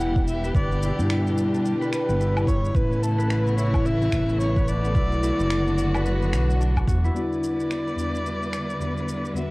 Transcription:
0.00 0.51 E1 medium
0.00 2.71 B2 medium
0.00 0.52 E3 medium
0.00 2.71 G3 medium
0.00 0.71 B3 medium
0.00 0.16 D4 medium
0.00 0.52 E4 medium
0.00 0.82 E4 medium
0.00 2.71 G4 medium
0.00 0.27 A4 medium
0.00 0.44 B4 medium
0.00 7.17 B4 medium
0.00 0.27 F#5 loud
0.00 shaker soft
0.16 1.54 D4 medium
0.16 kick loud
0.16 shaker soft
0.28 0.53 E5 loud
0.28 shaker medium
0.44 0.55 B4 medium
0.44 shaker soft
0.54 0.91 G1 medium
0.54 2.72 D3 medium
0.54 2.73 D4 medium
0.54 1.81 B4 medium
0.54 1.34 D5 loud
0.54 kick loud
0.54 shaker soft
0.71 2.08 B3 medium
0.71 shaker soft
0.82 1.09 E4 medium
0.82 shaker medium
0.98 1.74 G2 medium
0.98 shaker soft
1.10 2.19 E4 medium
1.10 finger snap medium
1.10 shaker soft
1.27 shaker soft
1.38 shaker medium
1.54 2.97 D4 medium
1.54 shaker soft
1.65 shaker soft
1.81 1.92 B4 loud
1.81 shaker soft
1.92 3.18 B4 medium
1.92 2.49 B4 loud
1.92 finger snap medium
1.92 shaker medium
2.08 2.71 G1 medium
2.08 3.46 B3 medium
2.08 shaker soft
2.20 2.47 E4 medium
2.20 shaker soft
2.37 low woodblock medium
2.37 shaker soft
2.47 3.57 E4 medium
2.47 2.76 C#5 loud
2.47 kick medium
2.47 shaker medium
2.65 shaker soft
2.75 4.09 A1 medium
2.75 4.93 C#3 medium
2.75 4.93 E3 medium
2.75 7.11 A3 medium
2.75 7.11 B3 medium
2.75 4.93 E4 medium
2.75 3.04 B4 loud
2.75 kick loud
2.75 shaker soft
2.91 4.29 C#4 medium
2.91 shaker soft
3.02 3.31 A4 medium
3.02 shaker medium
3.18 3.29 B4 loud
3.18 shaker soft
3.30 3.56 B4 loud
3.30 4.56 B4 medium
3.30 finger snap medium
3.30 shaker soft
3.46 4.84 B3 medium
3.46 shaker soft
3.57 3.85 E4 medium
3.57 3.87 C#5 loud
3.57 shaker medium
3.74 kick loud
3.74 low woodblock medium
3.74 shaker soft
3.85 4.95 E4 medium
3.85 4.40 E5 loud
3.85 shaker soft
4.02 shaker soft
4.12 4.97 A1 medium
4.12 finger snap medium
4.12 kick medium
4.12 shaker medium
4.29 5.73 C#4 medium
4.29 shaker soft
4.41 4.70 C#5 loud
4.41 shaker soft
4.56 4.67 B4 medium
4.56 kick medium
4.56 shaker soft
4.68 5.94 B4 medium
4.68 6.61 D5 loud
4.68 shaker medium
4.84 6.21 B3 medium
4.84 shaker soft
4.95 5.32 B1 medium
4.95 7.13 D3 medium
4.95 7.13 F#3 medium
4.95 5.22 E4 medium
4.95 7.13 F#4 medium
4.95 kick loud
4.95 shaker soft
5.12 shaker soft
5.23 7.04 E4 medium
5.23 shaker medium
5.39 6.34 F#1 medium
5.39 shaker soft
5.50 finger snap medium
5.50 shaker soft
5.67 6.60 D4 medium
5.67 shaker soft
5.78 shaker medium
5.94 6.05 B4 loud
5.94 low woodblock medium
5.94 shaker soft
6.05 8.10 B4 medium
6.05 shaker soft
6.21 9.32 B3 medium
6.21 shaker soft
6.33 6.84 B1 loud
6.33 6.76 F#4 medium
6.33 finger snap medium
6.33 shaker medium
6.50 shaker soft
6.61 9.40 D4 medium
6.61 shaker soft
6.76 6.87 F#4 medium
6.76 kick medium
6.76 low woodblock medium
6.76 shaker soft
6.88 7.11 E2 medium
6.88 9.31 F#4 medium
6.88 kick loud
6.88 shaker medium
7.04 9.51 E4 medium
7.04 shaker soft
7.13 7.94 E2 medium
7.13 9.51 D3 medium
7.13 7.95 G3 medium
7.13 9.51 G3 medium
7.13 9.51 B3 medium
7.13 7.95 B3 medium
7.13 7.96 D4 medium
7.13 9.33 E4 medium
7.13 7.96 F#4 medium
7.13 9.51 B4 medium
7.13 9.32 D5 loud
7.13 9.51 D6 medium
7.13 shaker soft
7.33 shaker soft
7.44 shaker medium
7.60 shaker soft
7.71 finger snap medium
7.71 shaker soft
7.88 shaker soft
7.96 8.77 E2 medium
7.96 8.77 G3 medium
7.96 8.78 B3 medium
7.96 8.78 D4 medium
7.96 shaker medium
8.00 8.79 F#4 loud
8.15 shaker soft
8.26 shaker soft
8.43 shaker soft
8.53 finger snap medium
8.53 shaker medium
8.70 shaker soft
8.79 9.32 E2 medium
8.79 9.33 G3 medium
8.79 9.33 B3 medium
8.79 9.33 D4 medium
8.79 9.33 F#4 medium
8.79 shaker soft
8.97 shaker soft
9.09 shaker medium
9.25 shaker soft
9.33 9.51 E2 medium
9.33 9.51 G3 medium
9.33 9.51 B3 medium
9.33 9.51 D4 medium
9.33 9.51 F#4 medium
9.33 9.51 F#4 loud
9.33 9.51 E5 loud
9.33 shaker soft

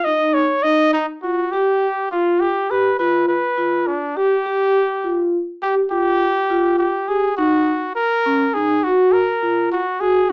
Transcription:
0.05 0.37 D#4 medium
0.05 0.35 D#5 medium
0.34 0.65 C#5 medium
0.63 0.95 D#4 medium
0.63 0.93 D#5 loud
0.93 1.07 D#4 medium
1.22 1.39 F4 medium
1.22 1.53 F#4 medium
1.51 2.11 G4 medium
1.51 1.84 G4 medium
2.11 2.42 F4 medium
2.40 2.72 G4 medium
2.71 2.86 G4 medium
2.71 2.99 B4 medium
2.99 3.30 F4 medium
2.99 3.26 B4 medium
3.28 3.89 B4 medium
3.58 3.88 F4 medium
3.87 4.18 D4 medium
4.17 5.36 G4 medium
4.17 4.32 G4 medium
4.46 4.77 G4 medium
5.04 5.35 F4 medium
5.62 5.75 G4 medium
5.62 5.78 G4 medium
5.91 6.22 F4 medium
5.91 6.75 G4 medium
6.50 6.81 F4 medium
6.79 7.10 G4 medium
7.08 7.24 G4 medium
7.08 7.36 G#4 medium
7.37 7.69 D#4 medium
7.37 7.92 F#4 medium
7.96 8.55 A#4 medium
8.26 8.41 C#4 medium
8.54 8.71 D#4 medium
8.54 8.85 G#4 medium
8.84 9.14 F#4 medium
8.84 9.15 F#4 medium
9.13 9.71 A#4 medium
9.43 9.73 F4 medium
9.72 10.02 F#4 medium
10.01 10.16 F#4 medium
10.01 10.31 G#4 medium

